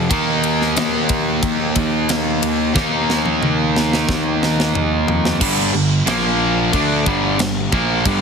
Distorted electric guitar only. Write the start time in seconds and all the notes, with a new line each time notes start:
Already playing: F3
0.09 D#3 A#3 D#4
2.74 D#3 A#3 D#4
5.40 G2 D3 G3
5.74 G2 D3
6.06 A#2 F3 A#3
6.72 D3 A3 D4
7.05 G2 D3 G3
7.39 G2 D3
7.72 A#2 F3 A#3
8.05 G2 D3 G3